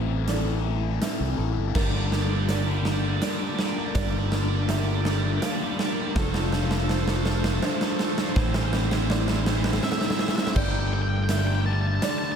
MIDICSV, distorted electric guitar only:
0, 0, Header, 1, 2, 480
1, 0, Start_track
1, 0, Tempo, 733496
1, 1148, Time_signature, 3, 2, 24, 8
1, 8086, End_track
2, 0, Start_track
2, 0, Title_t, "Distorted electric guitar"
2, 0, Program_c, 0, 30
2, 1147, Note_on_c, 0, 67, 72
2, 1149, Note_on_c, 0, 74, 73
2, 1193, Note_off_c, 0, 67, 0
2, 1196, Note_off_c, 0, 74, 0
2, 1196, Note_on_c, 0, 67, 49
2, 1199, Note_on_c, 0, 74, 51
2, 1245, Note_off_c, 0, 67, 0
2, 1246, Note_off_c, 0, 74, 0
2, 1247, Note_on_c, 0, 67, 55
2, 1249, Note_on_c, 0, 74, 63
2, 1291, Note_off_c, 0, 74, 0
2, 1294, Note_on_c, 0, 74, 55
2, 1295, Note_off_c, 0, 67, 0
2, 1298, Note_on_c, 0, 67, 47
2, 1345, Note_off_c, 0, 74, 0
2, 1349, Note_off_c, 0, 67, 0
2, 1355, Note_on_c, 0, 67, 58
2, 1363, Note_on_c, 0, 74, 62
2, 1396, Note_off_c, 0, 67, 0
2, 1399, Note_on_c, 0, 67, 49
2, 1405, Note_off_c, 0, 74, 0
2, 1408, Note_on_c, 0, 74, 57
2, 1445, Note_off_c, 0, 67, 0
2, 1448, Note_on_c, 0, 67, 61
2, 1455, Note_off_c, 0, 74, 0
2, 1457, Note_on_c, 0, 74, 60
2, 1499, Note_off_c, 0, 67, 0
2, 1502, Note_on_c, 0, 67, 49
2, 1505, Note_off_c, 0, 74, 0
2, 1508, Note_on_c, 0, 74, 53
2, 1552, Note_off_c, 0, 67, 0
2, 1554, Note_on_c, 0, 67, 63
2, 1558, Note_off_c, 0, 74, 0
2, 1561, Note_on_c, 0, 74, 64
2, 1603, Note_off_c, 0, 67, 0
2, 1606, Note_on_c, 0, 67, 51
2, 1610, Note_off_c, 0, 74, 0
2, 1613, Note_on_c, 0, 74, 58
2, 1657, Note_off_c, 0, 67, 0
2, 1661, Note_on_c, 0, 67, 63
2, 1663, Note_off_c, 0, 74, 0
2, 1666, Note_on_c, 0, 74, 61
2, 1705, Note_off_c, 0, 67, 0
2, 1707, Note_on_c, 0, 67, 54
2, 1709, Note_off_c, 0, 74, 0
2, 1711, Note_on_c, 0, 74, 59
2, 1755, Note_off_c, 0, 67, 0
2, 1758, Note_on_c, 0, 67, 63
2, 1763, Note_off_c, 0, 74, 0
2, 1767, Note_on_c, 0, 74, 69
2, 1809, Note_off_c, 0, 67, 0
2, 1810, Note_off_c, 0, 74, 0
2, 1812, Note_on_c, 0, 67, 53
2, 1813, Note_on_c, 0, 74, 59
2, 1858, Note_off_c, 0, 67, 0
2, 1859, Note_off_c, 0, 74, 0
2, 1861, Note_on_c, 0, 67, 63
2, 1861, Note_on_c, 0, 74, 67
2, 1911, Note_off_c, 0, 67, 0
2, 1912, Note_off_c, 0, 74, 0
2, 1913, Note_on_c, 0, 67, 57
2, 1923, Note_on_c, 0, 74, 59
2, 1965, Note_off_c, 0, 67, 0
2, 1965, Note_off_c, 0, 74, 0
2, 1967, Note_on_c, 0, 74, 68
2, 1968, Note_on_c, 0, 67, 64
2, 2011, Note_off_c, 0, 67, 0
2, 2014, Note_on_c, 0, 67, 50
2, 2018, Note_off_c, 0, 74, 0
2, 2023, Note_on_c, 0, 74, 54
2, 2065, Note_off_c, 0, 67, 0
2, 2071, Note_off_c, 0, 74, 0
2, 2071, Note_on_c, 0, 67, 58
2, 2073, Note_on_c, 0, 74, 65
2, 2115, Note_off_c, 0, 67, 0
2, 2118, Note_on_c, 0, 67, 54
2, 2123, Note_off_c, 0, 74, 0
2, 2125, Note_on_c, 0, 74, 54
2, 2165, Note_off_c, 0, 67, 0
2, 2168, Note_off_c, 0, 74, 0
2, 2168, Note_on_c, 0, 67, 63
2, 2170, Note_on_c, 0, 74, 66
2, 2219, Note_off_c, 0, 67, 0
2, 2220, Note_off_c, 0, 74, 0
2, 2223, Note_on_c, 0, 67, 54
2, 2223, Note_on_c, 0, 74, 51
2, 2268, Note_off_c, 0, 67, 0
2, 2270, Note_on_c, 0, 67, 55
2, 2274, Note_off_c, 0, 74, 0
2, 2279, Note_on_c, 0, 74, 59
2, 2319, Note_off_c, 0, 67, 0
2, 2321, Note_on_c, 0, 67, 52
2, 2322, Note_off_c, 0, 74, 0
2, 2325, Note_on_c, 0, 74, 52
2, 2372, Note_off_c, 0, 67, 0
2, 2372, Note_off_c, 0, 74, 0
2, 2374, Note_on_c, 0, 74, 61
2, 2377, Note_on_c, 0, 67, 59
2, 2417, Note_off_c, 0, 74, 0
2, 2420, Note_on_c, 0, 74, 48
2, 2428, Note_off_c, 0, 67, 0
2, 2433, Note_on_c, 0, 67, 46
2, 2471, Note_off_c, 0, 74, 0
2, 2477, Note_off_c, 0, 67, 0
2, 2477, Note_on_c, 0, 74, 62
2, 2479, Note_on_c, 0, 67, 57
2, 2525, Note_off_c, 0, 67, 0
2, 2525, Note_off_c, 0, 74, 0
2, 2527, Note_on_c, 0, 67, 46
2, 2527, Note_on_c, 0, 74, 49
2, 2578, Note_off_c, 0, 67, 0
2, 2578, Note_off_c, 0, 74, 0
2, 2587, Note_on_c, 0, 67, 68
2, 2589, Note_on_c, 0, 74, 88
2, 2629, Note_off_c, 0, 67, 0
2, 2632, Note_on_c, 0, 67, 52
2, 2634, Note_off_c, 0, 74, 0
2, 2636, Note_on_c, 0, 74, 62
2, 2680, Note_off_c, 0, 67, 0
2, 2682, Note_on_c, 0, 67, 61
2, 2686, Note_off_c, 0, 74, 0
2, 2688, Note_on_c, 0, 74, 72
2, 2732, Note_off_c, 0, 67, 0
2, 2738, Note_off_c, 0, 74, 0
2, 2738, Note_on_c, 0, 67, 51
2, 2741, Note_on_c, 0, 74, 60
2, 2780, Note_off_c, 0, 67, 0
2, 2783, Note_off_c, 0, 74, 0
2, 2783, Note_on_c, 0, 67, 60
2, 2785, Note_on_c, 0, 74, 75
2, 2832, Note_off_c, 0, 67, 0
2, 2835, Note_off_c, 0, 74, 0
2, 2835, Note_on_c, 0, 67, 54
2, 2841, Note_on_c, 0, 74, 66
2, 2880, Note_off_c, 0, 67, 0
2, 2882, Note_on_c, 0, 67, 61
2, 2890, Note_off_c, 0, 74, 0
2, 2894, Note_on_c, 0, 74, 76
2, 2931, Note_off_c, 0, 67, 0
2, 2934, Note_on_c, 0, 67, 55
2, 2936, Note_off_c, 0, 74, 0
2, 2939, Note_on_c, 0, 74, 61
2, 2980, Note_off_c, 0, 74, 0
2, 2983, Note_off_c, 0, 67, 0
2, 2983, Note_on_c, 0, 74, 70
2, 2986, Note_on_c, 0, 67, 62
2, 3022, Note_off_c, 0, 74, 0
2, 3024, Note_on_c, 0, 74, 62
2, 3031, Note_off_c, 0, 67, 0
2, 3034, Note_on_c, 0, 67, 51
2, 3074, Note_off_c, 0, 74, 0
2, 3080, Note_off_c, 0, 67, 0
2, 3083, Note_on_c, 0, 67, 66
2, 3092, Note_on_c, 0, 74, 71
2, 3127, Note_off_c, 0, 67, 0
2, 3129, Note_on_c, 0, 67, 57
2, 3136, Note_off_c, 0, 74, 0
2, 3139, Note_on_c, 0, 74, 69
2, 3179, Note_off_c, 0, 67, 0
2, 3184, Note_off_c, 0, 74, 0
2, 3184, Note_on_c, 0, 67, 66
2, 3186, Note_on_c, 0, 74, 81
2, 3232, Note_off_c, 0, 67, 0
2, 3234, Note_off_c, 0, 74, 0
2, 3235, Note_on_c, 0, 67, 55
2, 3236, Note_on_c, 0, 74, 69
2, 3278, Note_off_c, 0, 74, 0
2, 3281, Note_on_c, 0, 74, 76
2, 3284, Note_off_c, 0, 67, 0
2, 3290, Note_on_c, 0, 67, 65
2, 3331, Note_off_c, 0, 74, 0
2, 3335, Note_off_c, 0, 67, 0
2, 3337, Note_on_c, 0, 74, 68
2, 3338, Note_on_c, 0, 67, 55
2, 3379, Note_off_c, 0, 74, 0
2, 3382, Note_on_c, 0, 74, 81
2, 3383, Note_off_c, 0, 67, 0
2, 3385, Note_on_c, 0, 67, 65
2, 3432, Note_off_c, 0, 74, 0
2, 3434, Note_off_c, 0, 67, 0
2, 3435, Note_on_c, 0, 74, 62
2, 3437, Note_on_c, 0, 67, 54
2, 3481, Note_off_c, 0, 74, 0
2, 3482, Note_off_c, 0, 67, 0
2, 3483, Note_on_c, 0, 74, 77
2, 3485, Note_on_c, 0, 67, 65
2, 3531, Note_off_c, 0, 67, 0
2, 3531, Note_off_c, 0, 74, 0
2, 3534, Note_on_c, 0, 67, 51
2, 3534, Note_on_c, 0, 74, 70
2, 3574, Note_off_c, 0, 67, 0
2, 3577, Note_off_c, 0, 74, 0
2, 3577, Note_on_c, 0, 67, 58
2, 3579, Note_on_c, 0, 74, 77
2, 3626, Note_off_c, 0, 67, 0
2, 3626, Note_off_c, 0, 74, 0
2, 3629, Note_on_c, 0, 74, 61
2, 3631, Note_on_c, 0, 67, 50
2, 3679, Note_off_c, 0, 67, 0
2, 3679, Note_off_c, 0, 74, 0
2, 3682, Note_on_c, 0, 67, 60
2, 3688, Note_on_c, 0, 74, 76
2, 3730, Note_off_c, 0, 67, 0
2, 3733, Note_on_c, 0, 67, 52
2, 3734, Note_off_c, 0, 74, 0
2, 3737, Note_on_c, 0, 74, 66
2, 3775, Note_off_c, 0, 67, 0
2, 3778, Note_on_c, 0, 67, 57
2, 3780, Note_off_c, 0, 74, 0
2, 3782, Note_on_c, 0, 74, 72
2, 3828, Note_off_c, 0, 67, 0
2, 3832, Note_off_c, 0, 74, 0
2, 3835, Note_on_c, 0, 67, 50
2, 3836, Note_on_c, 0, 74, 63
2, 3875, Note_off_c, 0, 74, 0
2, 3878, Note_off_c, 0, 67, 0
2, 3878, Note_on_c, 0, 74, 64
2, 3881, Note_on_c, 0, 67, 59
2, 3926, Note_off_c, 0, 74, 0
2, 3929, Note_on_c, 0, 74, 57
2, 3931, Note_off_c, 0, 67, 0
2, 3933, Note_on_c, 0, 67, 51
2, 3976, Note_off_c, 0, 67, 0
2, 3977, Note_off_c, 0, 74, 0
2, 3978, Note_on_c, 0, 67, 54
2, 3979, Note_on_c, 0, 74, 69
2, 4024, Note_off_c, 0, 67, 0
2, 4027, Note_off_c, 0, 74, 0
2, 4027, Note_on_c, 0, 69, 84
2, 4029, Note_on_c, 0, 72, 78
2, 4075, Note_off_c, 0, 72, 0
2, 4076, Note_off_c, 0, 69, 0
2, 4078, Note_on_c, 0, 72, 59
2, 4079, Note_on_c, 0, 69, 57
2, 4121, Note_off_c, 0, 72, 0
2, 4123, Note_on_c, 0, 72, 71
2, 4124, Note_off_c, 0, 69, 0
2, 4126, Note_on_c, 0, 69, 65
2, 4174, Note_off_c, 0, 72, 0
2, 4176, Note_off_c, 0, 69, 0
2, 4181, Note_on_c, 0, 69, 59
2, 4185, Note_on_c, 0, 72, 56
2, 4228, Note_off_c, 0, 69, 0
2, 4230, Note_off_c, 0, 72, 0
2, 4231, Note_on_c, 0, 69, 65
2, 4233, Note_on_c, 0, 72, 65
2, 4270, Note_off_c, 0, 69, 0
2, 4273, Note_on_c, 0, 69, 58
2, 4276, Note_off_c, 0, 72, 0
2, 4279, Note_on_c, 0, 72, 64
2, 4317, Note_off_c, 0, 69, 0
2, 4320, Note_on_c, 0, 69, 73
2, 4330, Note_off_c, 0, 72, 0
2, 4339, Note_on_c, 0, 72, 68
2, 4368, Note_off_c, 0, 69, 0
2, 4371, Note_on_c, 0, 69, 58
2, 4382, Note_off_c, 0, 72, 0
2, 4385, Note_on_c, 0, 72, 65
2, 4421, Note_off_c, 0, 69, 0
2, 4425, Note_on_c, 0, 69, 71
2, 4436, Note_off_c, 0, 72, 0
2, 4443, Note_on_c, 0, 72, 74
2, 4475, Note_off_c, 0, 69, 0
2, 4480, Note_on_c, 0, 69, 65
2, 4485, Note_off_c, 0, 72, 0
2, 4488, Note_on_c, 0, 72, 61
2, 4521, Note_off_c, 0, 69, 0
2, 4524, Note_on_c, 0, 69, 76
2, 4534, Note_off_c, 0, 72, 0
2, 4536, Note_on_c, 0, 72, 71
2, 4570, Note_off_c, 0, 69, 0
2, 4572, Note_on_c, 0, 69, 62
2, 4585, Note_off_c, 0, 72, 0
2, 4588, Note_on_c, 0, 72, 60
2, 4614, Note_off_c, 0, 69, 0
2, 4617, Note_on_c, 0, 69, 75
2, 4639, Note_off_c, 0, 72, 0
2, 4644, Note_on_c, 0, 72, 75
2, 4666, Note_off_c, 0, 69, 0
2, 4671, Note_on_c, 0, 69, 64
2, 4690, Note_off_c, 0, 72, 0
2, 4693, Note_on_c, 0, 72, 66
2, 4721, Note_off_c, 0, 69, 0
2, 4725, Note_on_c, 0, 69, 73
2, 4742, Note_off_c, 0, 72, 0
2, 4745, Note_on_c, 0, 72, 79
2, 4772, Note_off_c, 0, 69, 0
2, 4775, Note_on_c, 0, 69, 59
2, 4787, Note_off_c, 0, 72, 0
2, 4790, Note_on_c, 0, 72, 66
2, 4819, Note_off_c, 0, 69, 0
2, 4822, Note_on_c, 0, 69, 69
2, 4840, Note_off_c, 0, 72, 0
2, 4843, Note_on_c, 0, 72, 76
2, 4865, Note_off_c, 0, 69, 0
2, 4868, Note_on_c, 0, 69, 59
2, 4894, Note_off_c, 0, 72, 0
2, 4900, Note_on_c, 0, 72, 67
2, 4917, Note_off_c, 0, 69, 0
2, 4926, Note_on_c, 0, 69, 74
2, 4951, Note_off_c, 0, 72, 0
2, 4954, Note_on_c, 0, 72, 77
2, 4968, Note_off_c, 0, 69, 0
2, 4970, Note_on_c, 0, 69, 60
2, 5002, Note_off_c, 0, 72, 0
2, 5005, Note_on_c, 0, 72, 59
2, 5020, Note_off_c, 0, 69, 0
2, 5025, Note_on_c, 0, 69, 71
2, 5053, Note_off_c, 0, 72, 0
2, 5056, Note_on_c, 0, 72, 76
2, 5063, Note_off_c, 0, 69, 0
2, 5065, Note_on_c, 0, 69, 64
2, 5098, Note_off_c, 0, 72, 0
2, 5101, Note_on_c, 0, 72, 63
2, 5115, Note_off_c, 0, 69, 0
2, 5125, Note_on_c, 0, 69, 73
2, 5152, Note_off_c, 0, 72, 0
2, 5159, Note_on_c, 0, 72, 74
2, 5164, Note_off_c, 0, 69, 0
2, 5167, Note_on_c, 0, 69, 55
2, 5199, Note_off_c, 0, 72, 0
2, 5201, Note_on_c, 0, 72, 59
2, 5216, Note_off_c, 0, 69, 0
2, 5218, Note_on_c, 0, 69, 71
2, 5250, Note_off_c, 0, 72, 0
2, 5252, Note_on_c, 0, 72, 65
2, 5266, Note_off_c, 0, 69, 0
2, 5268, Note_on_c, 0, 69, 59
2, 5303, Note_off_c, 0, 72, 0
2, 5306, Note_on_c, 0, 72, 59
2, 5316, Note_off_c, 0, 69, 0
2, 5318, Note_on_c, 0, 69, 68
2, 5357, Note_off_c, 0, 72, 0
2, 5359, Note_on_c, 0, 72, 66
2, 5368, Note_off_c, 0, 69, 0
2, 5375, Note_on_c, 0, 69, 57
2, 5405, Note_off_c, 0, 72, 0
2, 5408, Note_on_c, 0, 72, 54
2, 5417, Note_off_c, 0, 69, 0
2, 5420, Note_on_c, 0, 69, 67
2, 5459, Note_off_c, 0, 72, 0
2, 5466, Note_off_c, 0, 69, 0
2, 5468, Note_on_c, 0, 64, 75
2, 5468, Note_on_c, 0, 72, 85
2, 5517, Note_off_c, 0, 64, 0
2, 5517, Note_off_c, 0, 72, 0
2, 5519, Note_on_c, 0, 64, 52
2, 5519, Note_on_c, 0, 72, 60
2, 5564, Note_off_c, 0, 64, 0
2, 5567, Note_on_c, 0, 64, 59
2, 5568, Note_off_c, 0, 72, 0
2, 5571, Note_on_c, 0, 72, 70
2, 5615, Note_off_c, 0, 64, 0
2, 5616, Note_off_c, 0, 72, 0
2, 5618, Note_on_c, 0, 64, 55
2, 5619, Note_on_c, 0, 72, 64
2, 5662, Note_off_c, 0, 64, 0
2, 5665, Note_on_c, 0, 64, 66
2, 5668, Note_off_c, 0, 72, 0
2, 5670, Note_on_c, 0, 72, 72
2, 5712, Note_off_c, 0, 72, 0
2, 5713, Note_off_c, 0, 64, 0
2, 5714, Note_on_c, 0, 72, 68
2, 5715, Note_on_c, 0, 64, 58
2, 5764, Note_off_c, 0, 72, 0
2, 5765, Note_off_c, 0, 64, 0
2, 5767, Note_on_c, 0, 64, 70
2, 5776, Note_on_c, 0, 72, 79
2, 5816, Note_off_c, 0, 64, 0
2, 5816, Note_off_c, 0, 72, 0
2, 5818, Note_on_c, 0, 64, 55
2, 5819, Note_on_c, 0, 72, 68
2, 5861, Note_off_c, 0, 64, 0
2, 5861, Note_off_c, 0, 72, 0
2, 5863, Note_on_c, 0, 72, 80
2, 5864, Note_on_c, 0, 64, 67
2, 5909, Note_off_c, 0, 72, 0
2, 5912, Note_on_c, 0, 72, 73
2, 5913, Note_off_c, 0, 64, 0
2, 5918, Note_on_c, 0, 64, 59
2, 5961, Note_off_c, 0, 64, 0
2, 5961, Note_off_c, 0, 72, 0
2, 5964, Note_on_c, 0, 64, 72
2, 5966, Note_on_c, 0, 72, 84
2, 6007, Note_off_c, 0, 64, 0
2, 6010, Note_off_c, 0, 72, 0
2, 6010, Note_on_c, 0, 64, 64
2, 6013, Note_on_c, 0, 72, 68
2, 6059, Note_off_c, 0, 64, 0
2, 6062, Note_off_c, 0, 72, 0
2, 6063, Note_on_c, 0, 64, 70
2, 6065, Note_on_c, 0, 72, 77
2, 6109, Note_off_c, 0, 72, 0
2, 6111, Note_off_c, 0, 64, 0
2, 6111, Note_on_c, 0, 72, 68
2, 6114, Note_on_c, 0, 64, 62
2, 6159, Note_off_c, 0, 72, 0
2, 6162, Note_on_c, 0, 72, 85
2, 6163, Note_off_c, 0, 64, 0
2, 6172, Note_on_c, 0, 64, 70
2, 6210, Note_off_c, 0, 64, 0
2, 6212, Note_off_c, 0, 72, 0
2, 6212, Note_on_c, 0, 64, 62
2, 6215, Note_on_c, 0, 72, 69
2, 6261, Note_off_c, 0, 72, 0
2, 6262, Note_off_c, 0, 64, 0
2, 6264, Note_on_c, 0, 72, 83
2, 6265, Note_on_c, 0, 64, 72
2, 6305, Note_off_c, 0, 64, 0
2, 6308, Note_on_c, 0, 64, 63
2, 6314, Note_off_c, 0, 72, 0
2, 6316, Note_on_c, 0, 72, 69
2, 6357, Note_off_c, 0, 64, 0
2, 6359, Note_off_c, 0, 72, 0
2, 6362, Note_on_c, 0, 72, 80
2, 6366, Note_on_c, 0, 64, 67
2, 6401, Note_off_c, 0, 72, 0
2, 6404, Note_on_c, 0, 72, 67
2, 6408, Note_off_c, 0, 64, 0
2, 6411, Note_on_c, 0, 64, 60
2, 6454, Note_off_c, 0, 72, 0
2, 6457, Note_off_c, 0, 64, 0
2, 6459, Note_on_c, 0, 64, 70
2, 6463, Note_on_c, 0, 72, 78
2, 6507, Note_off_c, 0, 64, 0
2, 6509, Note_on_c, 0, 64, 58
2, 6511, Note_off_c, 0, 72, 0
2, 6514, Note_on_c, 0, 72, 70
2, 6555, Note_off_c, 0, 64, 0
2, 6558, Note_off_c, 0, 72, 0
2, 6558, Note_on_c, 0, 64, 68
2, 6560, Note_on_c, 0, 72, 77
2, 6608, Note_off_c, 0, 64, 0
2, 6610, Note_off_c, 0, 72, 0
2, 6612, Note_on_c, 0, 64, 53
2, 6617, Note_on_c, 0, 72, 69
2, 6650, Note_off_c, 0, 72, 0
2, 6652, Note_on_c, 0, 72, 79
2, 6662, Note_off_c, 0, 64, 0
2, 6666, Note_on_c, 0, 64, 65
2, 6698, Note_off_c, 0, 72, 0
2, 6700, Note_on_c, 0, 72, 67
2, 6706, Note_off_c, 0, 64, 0
2, 6709, Note_on_c, 0, 64, 55
2, 6750, Note_off_c, 0, 72, 0
2, 6755, Note_off_c, 0, 64, 0
2, 6757, Note_on_c, 0, 64, 61
2, 6757, Note_on_c, 0, 72, 76
2, 6807, Note_off_c, 0, 64, 0
2, 6807, Note_off_c, 0, 72, 0
2, 6810, Note_on_c, 0, 72, 66
2, 6811, Note_on_c, 0, 64, 53
2, 6847, Note_off_c, 0, 64, 0
2, 6850, Note_on_c, 0, 64, 58
2, 6856, Note_off_c, 0, 72, 0
2, 6859, Note_on_c, 0, 72, 70
2, 6900, Note_off_c, 0, 64, 0
2, 6908, Note_off_c, 0, 72, 0
2, 8086, End_track
0, 0, End_of_file